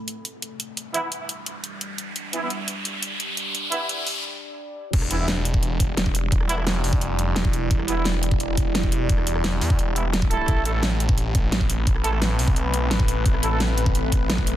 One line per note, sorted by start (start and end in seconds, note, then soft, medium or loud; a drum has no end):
0.00 4.89 G3 medium
0.00 2.13 E4 medium
0.00 4.89 D5 medium
0.00 riser medium
0.08 closed hi-hat medium
0.25 closed hi-hat medium
0.42 closed hi-hat medium
0.60 closed hi-hat medium
0.77 closed hi-hat medium
0.94 1.01 E3 loud
0.94 1.01 B3 medium
0.94 1.01 E4 loud
0.94 closed hi-hat medium
1.03 1.08 E3 medium
1.03 1.08 B3 medium
1.03 1.08 E4 medium
1.12 closed hi-hat medium
1.29 closed hi-hat medium
1.46 closed hi-hat medium
1.64 closed hi-hat medium
1.81 closed hi-hat medium
1.98 closed hi-hat medium
2.16 4.91 D4 medium
2.16 closed hi-hat medium
2.33 2.38 E3 medium
2.33 2.38 B3 medium
2.33 2.38 E4 medium
2.33 closed hi-hat medium
2.42 2.49 E3 medium
2.42 2.49 B3 medium
2.42 2.49 E4 medium
2.50 closed hi-hat medium
2.68 closed hi-hat medium
2.85 closed hi-hat medium
3.03 closed hi-hat medium
3.20 closed hi-hat medium
3.37 closed hi-hat medium
3.55 closed hi-hat medium
3.72 3.78 E3 loud
3.72 3.78 B3 medium
3.72 3.79 E4 loud
3.72 closed hi-hat medium
3.89 closed hi-hat medium
4.07 open hi-hat medium
4.93 5.09 E1 medium
4.93 10.44 G3 medium
4.93 10.44 E4 medium
4.93 10.44 D5 loud
4.93 kick loud
4.93 closed hi-hat medium
4.93 crash loud
4.93 impact medium
5.02 cross-stick medium
5.11 6.48 E1 loud
5.11 5.15 E3 medium
5.11 5.15 B3 medium
5.11 5.15 E4 medium
5.11 closed hi-hat loud
5.19 5.26 E3 medium
5.19 5.26 B3 medium
5.19 5.26 E4 medium
5.28 snare loud
5.28 closed hi-hat medium
5.45 closed hi-hat loud
5.54 kick loud
5.63 closed hi-hat medium
5.80 kick loud
5.80 closed hi-hat loud
5.97 snare loud
5.97 closed hi-hat medium
6.06 kick medium
6.15 closed hi-hat medium
6.32 kick loud
6.32 closed hi-hat medium
6.41 cross-stick medium
6.49 6.83 E1 loud
6.49 6.56 E3 loud
6.49 6.56 B3 medium
6.49 6.56 E4 loud
6.49 closed hi-hat medium
6.58 6.62 E3 medium
6.58 6.62 B3 medium
6.58 6.62 E4 medium
6.58 cross-stick medium
6.67 snare loud
6.67 closed hi-hat medium
6.84 7.35 F1 medium
6.84 open hi-hat medium
6.93 kick loud
7.01 closed hi-hat medium
7.19 closed hi-hat loud
7.36 7.69 E1 loud
7.36 snare loud
7.36 closed hi-hat medium
7.45 kick loud
7.53 closed hi-hat medium
7.71 7.87 E1 medium
7.71 kick loud
7.71 closed hi-hat medium
7.79 cross-stick medium
7.88 9.25 E1 loud
7.88 7.93 E3 medium
7.88 7.93 B3 medium
7.88 7.93 E4 medium
7.88 closed hi-hat medium
7.97 8.04 E3 medium
7.97 8.04 B3 medium
7.97 8.04 E4 medium
8.05 snare loud
8.05 closed hi-hat medium
8.23 closed hi-hat medium
8.31 kick loud
8.40 closed hi-hat medium
8.57 kick loud
8.57 closed hi-hat medium
8.75 snare loud
8.75 closed hi-hat medium
8.83 kick medium
8.92 closed hi-hat medium
9.09 kick loud
9.09 closed hi-hat medium
9.18 cross-stick medium
9.27 9.60 E1 loud
9.27 closed hi-hat medium
9.36 cross-stick medium
9.44 snare loud
9.44 closed hi-hat medium
9.61 9.77 E2 loud
9.61 open hi-hat medium
9.70 kick loud
9.79 10.47 E1 medium
9.79 closed hi-hat medium
9.96 10.03 E3 medium
9.96 10.03 B3 medium
9.96 10.03 E4 medium
9.96 closed hi-hat medium
10.13 snare loud
10.13 closed hi-hat medium
10.22 kick loud
10.31 10.64 A3 medium
10.31 10.64 E4 medium
10.31 10.64 A4 loud
10.31 closed hi-hat medium
10.48 10.64 A1 medium
10.48 14.56 A3 medium
10.48 14.56 C4 medium
10.48 14.56 B4 medium
10.48 kick loud
10.48 closed hi-hat medium
10.57 cross-stick medium
10.65 12.03 A1 loud
10.65 10.70 A3 medium
10.65 10.70 E4 medium
10.65 10.70 A4 medium
10.65 closed hi-hat medium
10.74 10.81 A3 medium
10.74 10.81 E4 medium
10.74 10.81 A4 medium
10.83 snare loud
10.83 closed hi-hat medium
11.00 closed hi-hat medium
11.09 kick loud
11.18 closed hi-hat medium
11.35 kick loud
11.35 closed hi-hat medium
11.52 snare loud
11.52 closed hi-hat medium
11.61 kick medium
11.70 closed hi-hat medium
11.87 kick loud
11.87 closed hi-hat medium
11.96 cross-stick medium
12.04 12.38 A1 loud
12.04 12.11 A3 loud
12.04 12.11 E4 medium
12.04 12.11 A4 loud
12.04 closed hi-hat medium
12.13 12.17 A3 medium
12.13 12.17 E4 medium
12.13 12.17 A4 medium
12.13 cross-stick medium
12.22 snare loud
12.22 closed hi-hat medium
12.39 12.90 B1 loud
12.39 open hi-hat medium
12.48 kick loud
12.56 closed hi-hat medium
12.74 closed hi-hat medium
12.91 13.24 A1 loud
12.91 snare loud
12.91 closed hi-hat medium
13.00 kick loud
13.08 closed hi-hat medium
13.26 13.42 A1 medium
13.26 kick loud
13.26 closed hi-hat medium
13.34 cross-stick medium
13.43 14.56 A1 loud
13.43 13.47 A3 medium
13.43 13.47 E4 medium
13.43 13.47 A4 medium
13.43 closed hi-hat loud
13.52 13.59 A3 medium
13.52 13.59 E4 medium
13.52 13.59 A4 medium
13.60 snare loud
13.60 closed hi-hat medium
13.78 closed hi-hat loud
13.86 kick loud
13.95 closed hi-hat medium
14.12 kick loud
14.12 closed hi-hat loud
14.30 snare loud
14.30 closed hi-hat medium
14.38 kick medium
14.47 closed hi-hat medium